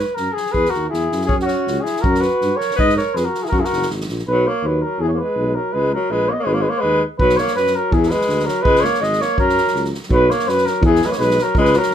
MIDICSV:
0, 0, Header, 1, 5, 480
1, 0, Start_track
1, 0, Tempo, 369686
1, 734, Time_signature, 2, 2, 24, 8
1, 6967, Tempo, 364078
1, 15640, End_track
2, 0, Start_track
2, 0, Title_t, "Cornet"
2, 0, Program_c, 0, 56
2, 0, Note_on_c, 0, 71, 75
2, 190, Note_on_c, 0, 70, 80
2, 210, Note_off_c, 0, 71, 0
2, 428, Note_on_c, 0, 68, 75
2, 448, Note_off_c, 0, 70, 0
2, 673, Note_on_c, 0, 71, 87
2, 693, Note_off_c, 0, 68, 0
2, 903, Note_on_c, 0, 70, 72
2, 923, Note_off_c, 0, 71, 0
2, 1160, Note_off_c, 0, 70, 0
2, 1168, Note_on_c, 0, 68, 72
2, 1623, Note_off_c, 0, 68, 0
2, 1631, Note_on_c, 0, 68, 88
2, 1755, Note_off_c, 0, 68, 0
2, 1843, Note_on_c, 0, 66, 72
2, 2344, Note_on_c, 0, 68, 76
2, 2363, Note_off_c, 0, 66, 0
2, 2608, Note_on_c, 0, 70, 85
2, 2628, Note_off_c, 0, 68, 0
2, 2873, Note_on_c, 0, 71, 75
2, 2892, Note_off_c, 0, 70, 0
2, 3329, Note_on_c, 0, 73, 81
2, 3348, Note_off_c, 0, 71, 0
2, 3595, Note_off_c, 0, 73, 0
2, 3617, Note_on_c, 0, 75, 96
2, 3842, Note_off_c, 0, 75, 0
2, 3855, Note_on_c, 0, 73, 81
2, 4085, Note_on_c, 0, 71, 77
2, 4104, Note_off_c, 0, 73, 0
2, 4213, Note_on_c, 0, 70, 71
2, 4232, Note_off_c, 0, 71, 0
2, 4450, Note_on_c, 0, 68, 69
2, 4469, Note_off_c, 0, 70, 0
2, 4517, Note_off_c, 0, 68, 0
2, 4525, Note_on_c, 0, 70, 83
2, 4664, Note_on_c, 0, 68, 66
2, 4684, Note_off_c, 0, 70, 0
2, 4737, Note_on_c, 0, 70, 87
2, 4757, Note_off_c, 0, 68, 0
2, 5047, Note_off_c, 0, 70, 0
2, 5555, Note_on_c, 0, 71, 91
2, 5813, Note_on_c, 0, 73, 75
2, 5832, Note_off_c, 0, 71, 0
2, 6052, Note_on_c, 0, 71, 65
2, 6072, Note_off_c, 0, 73, 0
2, 6256, Note_on_c, 0, 70, 73
2, 6275, Note_off_c, 0, 71, 0
2, 6499, Note_on_c, 0, 68, 83
2, 6519, Note_off_c, 0, 70, 0
2, 6601, Note_off_c, 0, 68, 0
2, 6609, Note_on_c, 0, 73, 56
2, 6728, Note_on_c, 0, 71, 78
2, 6748, Note_off_c, 0, 73, 0
2, 7209, Note_on_c, 0, 70, 79
2, 7229, Note_off_c, 0, 71, 0
2, 7445, Note_on_c, 0, 71, 102
2, 7464, Note_off_c, 0, 70, 0
2, 7688, Note_off_c, 0, 71, 0
2, 7714, Note_on_c, 0, 70, 74
2, 7958, Note_on_c, 0, 71, 80
2, 7978, Note_off_c, 0, 70, 0
2, 8179, Note_on_c, 0, 73, 70
2, 8199, Note_off_c, 0, 71, 0
2, 8227, Note_on_c, 0, 75, 75
2, 8247, Note_off_c, 0, 73, 0
2, 8354, Note_on_c, 0, 73, 87
2, 8373, Note_off_c, 0, 75, 0
2, 8426, Note_on_c, 0, 71, 67
2, 8446, Note_off_c, 0, 73, 0
2, 8525, Note_on_c, 0, 73, 72
2, 8544, Note_off_c, 0, 71, 0
2, 8628, Note_on_c, 0, 71, 76
2, 8648, Note_off_c, 0, 73, 0
2, 8714, Note_on_c, 0, 73, 73
2, 8734, Note_off_c, 0, 71, 0
2, 8843, Note_on_c, 0, 71, 93
2, 8862, Note_off_c, 0, 73, 0
2, 9150, Note_off_c, 0, 71, 0
2, 9368, Note_on_c, 0, 71, 102
2, 9608, Note_on_c, 0, 73, 87
2, 9628, Note_off_c, 0, 71, 0
2, 9846, Note_off_c, 0, 73, 0
2, 9854, Note_on_c, 0, 71, 94
2, 10120, Note_on_c, 0, 70, 81
2, 10140, Note_off_c, 0, 71, 0
2, 10343, Note_on_c, 0, 68, 92
2, 10363, Note_off_c, 0, 70, 0
2, 10564, Note_on_c, 0, 71, 74
2, 10584, Note_off_c, 0, 68, 0
2, 11021, Note_on_c, 0, 70, 86
2, 11041, Note_off_c, 0, 71, 0
2, 11252, Note_on_c, 0, 71, 103
2, 11272, Note_off_c, 0, 70, 0
2, 11505, Note_on_c, 0, 73, 82
2, 11525, Note_off_c, 0, 71, 0
2, 11788, Note_on_c, 0, 75, 94
2, 11808, Note_off_c, 0, 73, 0
2, 12035, Note_on_c, 0, 73, 90
2, 12055, Note_off_c, 0, 75, 0
2, 12270, Note_off_c, 0, 73, 0
2, 12278, Note_on_c, 0, 70, 99
2, 12940, Note_off_c, 0, 70, 0
2, 13243, Note_on_c, 0, 71, 93
2, 13476, Note_on_c, 0, 73, 74
2, 13495, Note_off_c, 0, 71, 0
2, 13710, Note_on_c, 0, 71, 84
2, 13730, Note_off_c, 0, 73, 0
2, 13942, Note_on_c, 0, 70, 74
2, 13962, Note_off_c, 0, 71, 0
2, 14179, Note_off_c, 0, 70, 0
2, 14196, Note_on_c, 0, 68, 93
2, 14470, Note_on_c, 0, 71, 85
2, 14490, Note_off_c, 0, 68, 0
2, 14510, Note_on_c, 0, 73, 67
2, 14530, Note_off_c, 0, 71, 0
2, 14637, Note_on_c, 0, 71, 90
2, 14657, Note_off_c, 0, 73, 0
2, 14955, Note_on_c, 0, 70, 78
2, 14975, Note_off_c, 0, 71, 0
2, 15161, Note_off_c, 0, 70, 0
2, 15185, Note_on_c, 0, 71, 93
2, 15421, Note_on_c, 0, 70, 81
2, 15441, Note_off_c, 0, 71, 0
2, 15640, Note_off_c, 0, 70, 0
2, 15640, End_track
3, 0, Start_track
3, 0, Title_t, "Alto saxophone"
3, 0, Program_c, 1, 65
3, 684, Note_on_c, 1, 68, 92
3, 906, Note_on_c, 1, 66, 80
3, 926, Note_off_c, 1, 68, 0
3, 1156, Note_off_c, 1, 66, 0
3, 1164, Note_on_c, 1, 64, 59
3, 1637, Note_off_c, 1, 64, 0
3, 1653, Note_on_c, 1, 61, 70
3, 1772, Note_off_c, 1, 61, 0
3, 1880, Note_on_c, 1, 61, 74
3, 2385, Note_on_c, 1, 64, 66
3, 2404, Note_off_c, 1, 61, 0
3, 2628, Note_on_c, 1, 66, 83
3, 2648, Note_off_c, 1, 64, 0
3, 2832, Note_off_c, 1, 66, 0
3, 2832, Note_on_c, 1, 66, 72
3, 3349, Note_on_c, 1, 70, 69
3, 3368, Note_off_c, 1, 66, 0
3, 3575, Note_off_c, 1, 70, 0
3, 3583, Note_on_c, 1, 71, 99
3, 3823, Note_off_c, 1, 71, 0
3, 3855, Note_on_c, 1, 70, 71
3, 4114, Note_on_c, 1, 68, 56
3, 4133, Note_off_c, 1, 70, 0
3, 4229, Note_on_c, 1, 66, 66
3, 4248, Note_off_c, 1, 68, 0
3, 4475, Note_on_c, 1, 64, 56
3, 4495, Note_off_c, 1, 66, 0
3, 4556, Note_off_c, 1, 64, 0
3, 4564, Note_on_c, 1, 66, 78
3, 4683, Note_on_c, 1, 64, 67
3, 4703, Note_off_c, 1, 66, 0
3, 4742, Note_on_c, 1, 66, 79
3, 4761, Note_off_c, 1, 64, 0
3, 5049, Note_off_c, 1, 66, 0
3, 5590, Note_on_c, 1, 54, 87
3, 5811, Note_on_c, 1, 58, 74
3, 5830, Note_off_c, 1, 54, 0
3, 6066, Note_on_c, 1, 54, 59
3, 6086, Note_off_c, 1, 58, 0
3, 6288, Note_off_c, 1, 54, 0
3, 6288, Note_on_c, 1, 54, 62
3, 6542, Note_on_c, 1, 52, 72
3, 6562, Note_off_c, 1, 54, 0
3, 6657, Note_off_c, 1, 52, 0
3, 6664, Note_on_c, 1, 58, 47
3, 6782, Note_on_c, 1, 56, 75
3, 6801, Note_off_c, 1, 58, 0
3, 7223, Note_on_c, 1, 54, 64
3, 7243, Note_off_c, 1, 56, 0
3, 7454, Note_on_c, 1, 56, 88
3, 7474, Note_off_c, 1, 54, 0
3, 7693, Note_off_c, 1, 56, 0
3, 7731, Note_on_c, 1, 54, 75
3, 7955, Note_on_c, 1, 56, 74
3, 7974, Note_off_c, 1, 54, 0
3, 8188, Note_on_c, 1, 58, 68
3, 8207, Note_off_c, 1, 56, 0
3, 8212, Note_on_c, 1, 59, 47
3, 8232, Note_off_c, 1, 58, 0
3, 8324, Note_on_c, 1, 58, 68
3, 8344, Note_off_c, 1, 59, 0
3, 8390, Note_on_c, 1, 56, 81
3, 8410, Note_off_c, 1, 58, 0
3, 8509, Note_on_c, 1, 58, 77
3, 8529, Note_off_c, 1, 56, 0
3, 8604, Note_on_c, 1, 56, 69
3, 8624, Note_off_c, 1, 58, 0
3, 8713, Note_on_c, 1, 58, 74
3, 8733, Note_off_c, 1, 56, 0
3, 8859, Note_on_c, 1, 56, 83
3, 8878, Note_off_c, 1, 58, 0
3, 9158, Note_off_c, 1, 56, 0
3, 9379, Note_on_c, 1, 54, 87
3, 9648, Note_on_c, 1, 58, 80
3, 9667, Note_off_c, 1, 54, 0
3, 9861, Note_off_c, 1, 58, 0
3, 9869, Note_on_c, 1, 54, 60
3, 10106, Note_off_c, 1, 54, 0
3, 10106, Note_on_c, 1, 54, 70
3, 10353, Note_on_c, 1, 52, 89
3, 10373, Note_off_c, 1, 54, 0
3, 10593, Note_on_c, 1, 56, 81
3, 10613, Note_off_c, 1, 52, 0
3, 11057, Note_on_c, 1, 54, 80
3, 11077, Note_off_c, 1, 56, 0
3, 11284, Note_on_c, 1, 56, 97
3, 11304, Note_off_c, 1, 54, 0
3, 11551, Note_on_c, 1, 58, 84
3, 11570, Note_off_c, 1, 56, 0
3, 11764, Note_on_c, 1, 56, 76
3, 11783, Note_off_c, 1, 58, 0
3, 12035, Note_on_c, 1, 58, 69
3, 12055, Note_off_c, 1, 56, 0
3, 12262, Note_off_c, 1, 58, 0
3, 12270, Note_on_c, 1, 54, 84
3, 12936, Note_off_c, 1, 54, 0
3, 13209, Note_on_c, 1, 54, 85
3, 13475, Note_on_c, 1, 58, 75
3, 13495, Note_off_c, 1, 54, 0
3, 13727, Note_on_c, 1, 54, 65
3, 13747, Note_off_c, 1, 58, 0
3, 13966, Note_off_c, 1, 54, 0
3, 13966, Note_on_c, 1, 54, 65
3, 14191, Note_off_c, 1, 54, 0
3, 14201, Note_on_c, 1, 52, 89
3, 14474, Note_on_c, 1, 56, 75
3, 14493, Note_off_c, 1, 52, 0
3, 14532, Note_on_c, 1, 58, 56
3, 14552, Note_off_c, 1, 56, 0
3, 14618, Note_on_c, 1, 56, 81
3, 14638, Note_off_c, 1, 58, 0
3, 14932, Note_on_c, 1, 54, 70
3, 14952, Note_off_c, 1, 56, 0
3, 15144, Note_off_c, 1, 54, 0
3, 15152, Note_on_c, 1, 56, 100
3, 15406, Note_on_c, 1, 54, 83
3, 15426, Note_off_c, 1, 56, 0
3, 15640, Note_off_c, 1, 54, 0
3, 15640, End_track
4, 0, Start_track
4, 0, Title_t, "Tuba"
4, 0, Program_c, 2, 58
4, 246, Note_on_c, 2, 42, 69
4, 380, Note_off_c, 2, 42, 0
4, 716, Note_on_c, 2, 40, 82
4, 854, Note_off_c, 2, 40, 0
4, 973, Note_on_c, 2, 39, 63
4, 1191, Note_off_c, 2, 39, 0
4, 1210, Note_on_c, 2, 40, 69
4, 1431, Note_off_c, 2, 40, 0
4, 1456, Note_on_c, 2, 42, 73
4, 1674, Note_off_c, 2, 42, 0
4, 1696, Note_on_c, 2, 42, 76
4, 1962, Note_off_c, 2, 42, 0
4, 2171, Note_on_c, 2, 37, 78
4, 2306, Note_off_c, 2, 37, 0
4, 2648, Note_on_c, 2, 42, 92
4, 2916, Note_off_c, 2, 42, 0
4, 3141, Note_on_c, 2, 43, 72
4, 3273, Note_off_c, 2, 43, 0
4, 3608, Note_on_c, 2, 44, 85
4, 3875, Note_off_c, 2, 44, 0
4, 4093, Note_on_c, 2, 41, 79
4, 4226, Note_off_c, 2, 41, 0
4, 4562, Note_on_c, 2, 42, 87
4, 4698, Note_off_c, 2, 42, 0
4, 4821, Note_on_c, 2, 30, 69
4, 5034, Note_off_c, 2, 30, 0
4, 5059, Note_on_c, 2, 32, 62
4, 5273, Note_off_c, 2, 32, 0
4, 5305, Note_on_c, 2, 34, 73
4, 5516, Note_off_c, 2, 34, 0
4, 5537, Note_on_c, 2, 35, 86
4, 5799, Note_off_c, 2, 35, 0
4, 6006, Note_on_c, 2, 39, 86
4, 6269, Note_off_c, 2, 39, 0
4, 6476, Note_on_c, 2, 40, 90
4, 6742, Note_off_c, 2, 40, 0
4, 6966, Note_on_c, 2, 35, 83
4, 7232, Note_off_c, 2, 35, 0
4, 7459, Note_on_c, 2, 37, 78
4, 7722, Note_off_c, 2, 37, 0
4, 7932, Note_on_c, 2, 34, 75
4, 8197, Note_off_c, 2, 34, 0
4, 8398, Note_on_c, 2, 32, 92
4, 8668, Note_off_c, 2, 32, 0
4, 8903, Note_on_c, 2, 39, 77
4, 9167, Note_off_c, 2, 39, 0
4, 9367, Note_on_c, 2, 35, 82
4, 9635, Note_off_c, 2, 35, 0
4, 9863, Note_on_c, 2, 42, 64
4, 10128, Note_off_c, 2, 42, 0
4, 10328, Note_on_c, 2, 40, 94
4, 10597, Note_off_c, 2, 40, 0
4, 10802, Note_on_c, 2, 38, 77
4, 11073, Note_off_c, 2, 38, 0
4, 11284, Note_on_c, 2, 37, 83
4, 11554, Note_off_c, 2, 37, 0
4, 11764, Note_on_c, 2, 32, 69
4, 12034, Note_off_c, 2, 32, 0
4, 12253, Note_on_c, 2, 42, 80
4, 12520, Note_off_c, 2, 42, 0
4, 12731, Note_on_c, 2, 37, 74
4, 12998, Note_off_c, 2, 37, 0
4, 13206, Note_on_c, 2, 35, 94
4, 13474, Note_off_c, 2, 35, 0
4, 13697, Note_on_c, 2, 42, 67
4, 13960, Note_off_c, 2, 42, 0
4, 14141, Note_on_c, 2, 40, 98
4, 14413, Note_off_c, 2, 40, 0
4, 14640, Note_on_c, 2, 35, 89
4, 14905, Note_off_c, 2, 35, 0
4, 15127, Note_on_c, 2, 37, 98
4, 15389, Note_off_c, 2, 37, 0
4, 15599, Note_on_c, 2, 32, 85
4, 15640, Note_off_c, 2, 32, 0
4, 15640, End_track
5, 0, Start_track
5, 0, Title_t, "Drums"
5, 215, Note_on_c, 9, 38, 23
5, 345, Note_off_c, 9, 38, 0
5, 475, Note_on_c, 9, 38, 23
5, 598, Note_off_c, 9, 38, 0
5, 598, Note_on_c, 9, 38, 20
5, 706, Note_on_c, 9, 36, 64
5, 728, Note_off_c, 9, 38, 0
5, 836, Note_off_c, 9, 36, 0
5, 846, Note_on_c, 9, 38, 18
5, 956, Note_off_c, 9, 38, 0
5, 956, Note_on_c, 9, 38, 21
5, 1086, Note_off_c, 9, 38, 0
5, 1211, Note_on_c, 9, 38, 22
5, 1341, Note_off_c, 9, 38, 0
5, 1449, Note_on_c, 9, 38, 24
5, 1570, Note_off_c, 9, 38, 0
5, 1570, Note_on_c, 9, 38, 19
5, 1677, Note_on_c, 9, 36, 84
5, 1700, Note_off_c, 9, 38, 0
5, 1806, Note_off_c, 9, 36, 0
5, 1811, Note_on_c, 9, 38, 21
5, 1918, Note_off_c, 9, 38, 0
5, 1918, Note_on_c, 9, 38, 27
5, 2048, Note_off_c, 9, 38, 0
5, 2169, Note_on_c, 9, 38, 28
5, 2298, Note_off_c, 9, 38, 0
5, 2407, Note_on_c, 9, 38, 29
5, 2537, Note_off_c, 9, 38, 0
5, 2545, Note_on_c, 9, 38, 23
5, 2648, Note_on_c, 9, 36, 93
5, 2675, Note_off_c, 9, 38, 0
5, 2778, Note_off_c, 9, 36, 0
5, 2784, Note_on_c, 9, 38, 28
5, 2885, Note_off_c, 9, 38, 0
5, 2885, Note_on_c, 9, 38, 31
5, 3014, Note_off_c, 9, 38, 0
5, 3129, Note_on_c, 9, 38, 26
5, 3259, Note_off_c, 9, 38, 0
5, 3381, Note_on_c, 9, 38, 30
5, 3510, Note_off_c, 9, 38, 0
5, 3513, Note_on_c, 9, 38, 25
5, 3620, Note_on_c, 9, 36, 89
5, 3643, Note_off_c, 9, 38, 0
5, 3750, Note_off_c, 9, 36, 0
5, 3757, Note_on_c, 9, 38, 21
5, 3871, Note_off_c, 9, 38, 0
5, 3871, Note_on_c, 9, 38, 26
5, 4001, Note_off_c, 9, 38, 0
5, 4102, Note_on_c, 9, 38, 28
5, 4232, Note_off_c, 9, 38, 0
5, 4341, Note_on_c, 9, 38, 31
5, 4471, Note_off_c, 9, 38, 0
5, 4484, Note_on_c, 9, 38, 22
5, 4577, Note_on_c, 9, 36, 76
5, 4614, Note_off_c, 9, 38, 0
5, 4707, Note_off_c, 9, 36, 0
5, 4728, Note_on_c, 9, 38, 25
5, 4840, Note_off_c, 9, 38, 0
5, 4840, Note_on_c, 9, 38, 29
5, 4961, Note_off_c, 9, 38, 0
5, 4961, Note_on_c, 9, 38, 30
5, 5062, Note_off_c, 9, 38, 0
5, 5062, Note_on_c, 9, 38, 28
5, 5192, Note_off_c, 9, 38, 0
5, 5199, Note_on_c, 9, 38, 30
5, 5308, Note_off_c, 9, 38, 0
5, 5308, Note_on_c, 9, 38, 33
5, 5433, Note_off_c, 9, 38, 0
5, 5433, Note_on_c, 9, 38, 23
5, 5563, Note_off_c, 9, 38, 0
5, 9379, Note_on_c, 9, 36, 85
5, 9507, Note_on_c, 9, 38, 22
5, 9511, Note_off_c, 9, 36, 0
5, 9620, Note_off_c, 9, 38, 0
5, 9620, Note_on_c, 9, 38, 26
5, 9746, Note_off_c, 9, 38, 0
5, 9746, Note_on_c, 9, 38, 29
5, 9867, Note_off_c, 9, 38, 0
5, 9867, Note_on_c, 9, 38, 23
5, 9997, Note_off_c, 9, 38, 0
5, 9997, Note_on_c, 9, 38, 26
5, 10129, Note_off_c, 9, 38, 0
5, 10339, Note_on_c, 9, 36, 97
5, 10471, Note_off_c, 9, 36, 0
5, 10478, Note_on_c, 9, 38, 22
5, 10573, Note_off_c, 9, 38, 0
5, 10573, Note_on_c, 9, 38, 26
5, 10705, Note_off_c, 9, 38, 0
5, 10716, Note_on_c, 9, 38, 26
5, 10822, Note_off_c, 9, 38, 0
5, 10822, Note_on_c, 9, 38, 29
5, 10954, Note_off_c, 9, 38, 0
5, 10957, Note_on_c, 9, 38, 25
5, 11073, Note_off_c, 9, 38, 0
5, 11073, Note_on_c, 9, 38, 32
5, 11205, Note_off_c, 9, 38, 0
5, 11300, Note_on_c, 9, 36, 90
5, 11432, Note_off_c, 9, 36, 0
5, 11434, Note_on_c, 9, 38, 23
5, 11553, Note_off_c, 9, 38, 0
5, 11553, Note_on_c, 9, 38, 28
5, 11682, Note_off_c, 9, 38, 0
5, 11682, Note_on_c, 9, 38, 27
5, 11800, Note_off_c, 9, 38, 0
5, 11800, Note_on_c, 9, 38, 29
5, 11927, Note_off_c, 9, 38, 0
5, 11927, Note_on_c, 9, 38, 23
5, 12041, Note_off_c, 9, 38, 0
5, 12041, Note_on_c, 9, 38, 27
5, 12173, Note_off_c, 9, 38, 0
5, 12258, Note_on_c, 9, 36, 83
5, 12390, Note_off_c, 9, 36, 0
5, 12404, Note_on_c, 9, 38, 23
5, 12512, Note_off_c, 9, 38, 0
5, 12512, Note_on_c, 9, 38, 25
5, 12643, Note_off_c, 9, 38, 0
5, 12644, Note_on_c, 9, 38, 25
5, 12757, Note_off_c, 9, 38, 0
5, 12757, Note_on_c, 9, 38, 26
5, 12871, Note_off_c, 9, 38, 0
5, 12871, Note_on_c, 9, 38, 25
5, 12998, Note_off_c, 9, 38, 0
5, 12998, Note_on_c, 9, 38, 27
5, 13111, Note_off_c, 9, 38, 0
5, 13111, Note_on_c, 9, 38, 22
5, 13215, Note_on_c, 9, 36, 86
5, 13243, Note_off_c, 9, 38, 0
5, 13347, Note_off_c, 9, 36, 0
5, 13477, Note_on_c, 9, 38, 28
5, 13591, Note_off_c, 9, 38, 0
5, 13591, Note_on_c, 9, 38, 30
5, 13714, Note_off_c, 9, 38, 0
5, 13714, Note_on_c, 9, 38, 30
5, 13835, Note_off_c, 9, 38, 0
5, 13835, Note_on_c, 9, 38, 29
5, 13952, Note_off_c, 9, 38, 0
5, 13952, Note_on_c, 9, 38, 29
5, 14083, Note_off_c, 9, 38, 0
5, 14167, Note_on_c, 9, 36, 102
5, 14298, Note_off_c, 9, 36, 0
5, 14330, Note_on_c, 9, 38, 25
5, 14418, Note_off_c, 9, 38, 0
5, 14418, Note_on_c, 9, 38, 31
5, 14549, Note_off_c, 9, 38, 0
5, 14556, Note_on_c, 9, 38, 32
5, 14672, Note_off_c, 9, 38, 0
5, 14672, Note_on_c, 9, 38, 33
5, 14797, Note_off_c, 9, 38, 0
5, 14797, Note_on_c, 9, 38, 31
5, 14899, Note_off_c, 9, 38, 0
5, 14899, Note_on_c, 9, 38, 32
5, 15031, Note_off_c, 9, 38, 0
5, 15119, Note_on_c, 9, 36, 90
5, 15250, Note_off_c, 9, 36, 0
5, 15250, Note_on_c, 9, 38, 23
5, 15357, Note_off_c, 9, 38, 0
5, 15357, Note_on_c, 9, 38, 30
5, 15481, Note_off_c, 9, 38, 0
5, 15481, Note_on_c, 9, 38, 28
5, 15597, Note_off_c, 9, 38, 0
5, 15597, Note_on_c, 9, 38, 29
5, 15640, Note_off_c, 9, 38, 0
5, 15640, End_track
0, 0, End_of_file